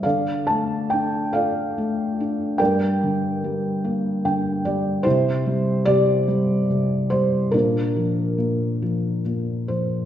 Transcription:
<<
  \new Staff \with { instrumentName = "Felt piano" } { \time 6/8 \key bes \lydian \tempo 4. = 48 << { f''8 a''8 g''8 f''4. | g''2~ g''8 r8 | c''4 d''4. c''8 | bes'2 r8 c''8 | } \\ { <a' d''>4. <a' d''>4. | <bes' d''>2~ <bes' d''>8 r8 | <e' g'>4 g'4. r8 | <d' f'>2 r4 | } >> }
  \new Staff \with { instrumentName = "Felt piano" } { \clef bass \time 6/8 \key bes \lydian d8 a8 d'8 f'8 a8 d'8 | g,8 d8 g8 bes8 <d g''>8 <g d''>8 | c8 g8 c8 g8 c8 g8 | bes,8 f8 bes,8 f8 bes,8 f8 | }
>>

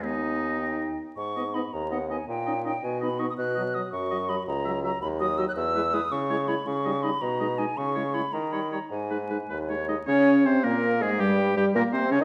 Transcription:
<<
  \new Staff \with { instrumentName = "Flute" } { \time 6/8 \key gis \minor \tempo 4. = 108 gis''4. g''4 r8 | cis'''4 b''8 ais''8 fis''8 gis''8 | g''4 g''8 gis''8 b''8 cis'''16 dis'''16 | fis'''4 dis'''8 cis'''4 b''8 |
ais''4 ais''8 b''8 dis'''8 e'''16 fis'''16 | e'''4 dis'''8 cis'''4 b''8 | cis'''4 b''8 ais''4 gis''8 | cis'''4 b''8 ais''8 b''8 ais''8 |
gis''4. r4. | \key ees \mixolydian des''4 c''8 bes'4 aes'8 | g'4 g'8 bes'8 c''8 des''16 ees''16 | }
  \new Staff \with { instrumentName = "Oboe" } { \time 6/8 \key gis \minor dis'2~ dis'8 r8 | r8 dis''8 dis''8 r8 dis''8 dis''8 | r8 dis''8 dis''8 r8 dis''8 dis''8 | r8 dis''8 dis''8 r8 dis''8 dis''8 |
r8 e''8 e''8 r8 dis''8 dis''8 | r8 b'8 b'8 r8 cis''8 cis''8 | r8 dis''8 dis''8 r8 dis''8 dis''8 | r8 cis''8 cis''8 r8 cis''8 cis''8 |
r8 b'8 b'8 b'8 cis''8 dis''8 | \key ees \mixolydian des''4 c''8 bes'4 aes'8 | g'4 g'8 bes'8 c''8 des''16 r16 | }
  \new Staff \with { instrumentName = "Clarinet" } { \time 6/8 \key gis \minor b2~ b16 r8. | r8 dis'8 dis'8 r8 dis'8 dis'8 | r8 dis'8 dis'8 r8 dis'8 dis'8 | r8 fis'8 fis'8 r8 fis'8 fis'8 |
r8 fis'8 fis'8 r8 fis'8 fis'8 | r8 e'8 e'8 r8 e'8 e'8 | r8 dis'8 dis'8 r8 dis'8 dis'8 | r8 e'8 e'8 r8 dis'8 dis'8 |
r8 dis'8 dis'8 r8 dis'8 dis'8 | \key ees \mixolydian des'4 c'8 bes4 aes8 | g4 g8 bes8 c'8 des'16 ees'16 | }
  \new Staff \with { instrumentName = "French horn" } { \clef bass \time 6/8 \key gis \minor dis'4. dis'4 r8 | r8 b8 b8 r8 b8 b8 | r8 cis'8 cis'8 r8 b8 b8 | r8 fis8 fis8 r8 fis8 fis8 |
r8 fis8 fis8 r8 fis8 fis8 | r8 gis8 gis8 r8 gis8 gis8 | r8 g8 g8 r8 gis8 gis8 | r8 gis8 gis8 r8 g8 g8 |
r8 gis8 gis8 r8 gis8 gis8 | \key ees \mixolydian des'4 c'8 bes4 aes8 | g4 g8 bes8 c'8 des'16 r16 | }
  \new Staff \with { instrumentName = "Bassoon" } { \clef bass \time 6/8 \key gis \minor dis,2~ dis,8 r8 | gis,4. dis,4. | ais,4. b,4. | b,4. fis,4. |
cis,4. dis,4. | e,4. cis4. | cis4. b,4. | cis4. dis4. |
gis,4. dis,4. | \key ees \mixolydian des4 c8 bes,4 aes,8 | g,4 g,8 bes,8 c8 des16 ees16 | }
>>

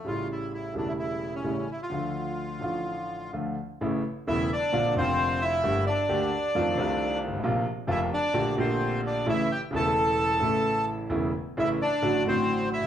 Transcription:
<<
  \new Staff \with { instrumentName = "Bandoneon" } { \time 4/4 \key a \phrygian \tempo 4 = 130 f'8 e'8 e'8 d'16 e'16 e'8. cis'8. e'16 f'16~ | f'2. r4 | r4 <e' e''>8 <d' d''>4 <c' c''>4 <e' e''>8~ | <e' e''>8 <d' d''>2. r8 |
r4 <e' e''>8 <d' d''>4 <c' c''>4 <d' d''>8 | <e' e''>8 <g' g''>8 <a' a''>2~ <a' a''>8 r8 | r4 <e' e''>8 <d' d''>4 <c' c''>4 <e' e''>8 | }
  \new Staff \with { instrumentName = "Grand piano" } { \clef bass \time 4/4 \key a \phrygian << { <a,, a, cis g a e'>4. <e,, e, cis g a e'>4. <a,, a, cis g a e'>8 r8 | <d, d f a f'>4. <a,, a, d f a f'>4. <d, d f a f'>8 r8 | <a,, a, cis e a e'>8 r8 <e,, e, cis e a e'>8 r8 <bes,, bes, d bes c' f'>8 <f,, f, d bes c' f'>4. | <g,, g, d a bes g'>8 r8 <d, d a bes g'>8 r8 <f, ees f a c' f'>8 <c, c ees a c' f'>4. |
<bes,, bes, c f bes f'>8 r8 <f,, f, c f bes f'>8 r8 <bes,, bes, d a bes g'>8 <bes,, bes, d a bes g'>4. | <a,, a, cis e a e'>8 r8 <e,, e, cis e a e'>4. <a,, a, cis e a e'>4. | <e,, e, cis e a e'>8 r8 <a,, a, cis e a e'>8 r8 <a,, a, d fis a fis'>8 <a,, a, d fis a fis'>4. | } \\ { r1 | r1 | r1 | r2. r8 r32 g,,32 gis,,32 a,,32 |
r1 | r1 | r2. r8 r32 g,,32 r16 | } >> }
>>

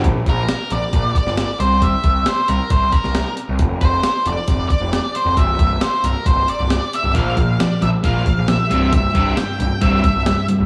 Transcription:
<<
  \new Staff \with { instrumentName = "Lead electric guitar" } { \time 4/4 \key c \mixolydian \tempo 4 = 135 r8 bes'4 d''4 d''4 c''8 | e''4 c''8 bes'8 c''8 bes'4 r8 | r8 c''4 d''4 d''4 c''8 | e''4 c''8 bes'8 c''8 d''4 e''8 |
f''4 d''8 e''8 f''4 e''4 | e''4 g''4 e''8 e''4 r8 | }
  \new Staff \with { instrumentName = "Overdriven electric guitar" } { \clef bass \time 4/4 \key c \mixolydian r1 | r1 | r1 | r1 |
<bes, f bes>8 <bes, f>8 <bes, f>8 <bes, f>8 <bes, f bes>8 <bes, f>8 <bes, f>8 <c, g, c>8 | <c, g,>8 <c, g, c>8 <c, g,>8 <c, g,>8 <c, g, c>8 <c, g,>8 <c, g,>8 <c, g,>8 | }
  \new Staff \with { instrumentName = "Picked electric bass" } { \clef bass \time 4/4 \key c \mixolydian bes,,8 bes,,8 r8 bes,,16 r16 bes,,8 r16 g,,8 r16 c,8~ | c,8 c,8 r8 c,16 r16 c,8 r16 c,8 r8 c,16 | f,,8 f,,8 r8 f,,16 r16 f,,8 r16 f,,8 r8 f,,16 | c,,8 c,,8 r8 c,,16 r16 c,,8 r16 c,,8 r8 c,,16 |
bes,,8 bes,,8 r8 bes,,16 r16 bes,,8 r16 bes,,8 r16 c,,8~ | c,,8 c,,8 r8 c,,16 r16 c,,8 r16 c,,8 r8 c,,16 | }
  \new DrumStaff \with { instrumentName = "Drums" } \drummode { \time 4/4 <hh bd>8 <hh bd>8 <hh sn>8 hh8 <hh bd>8 <hh bd>16 sn16 <hh sn>8 hh8 | <hh bd>8 <hh bd>8 <hh sn>8 hh8 <hh bd>8 <hh bd>16 sn16 <hh sn>8 hh8 | <hh bd>8 <hh bd>8 <hh sn>8 hh8 <hh bd>8 <hh bd>8 <hh sn>8 hh8 | <hh bd>8 <hh bd>8 <hh sn>8 hh8 <hh bd>8 hh8 <hh sn>8 hh8 |
<hh bd>8 <hh bd>8 <hh sn>8 hh8 <hh bd>8 <hh bd>8 <hh sn>8 hh8 | <hh bd>8 <hh bd>8 <hh sn>8 hh8 <hh bd>8 <hh bd>8 <hh sn>8 hh8 | }
>>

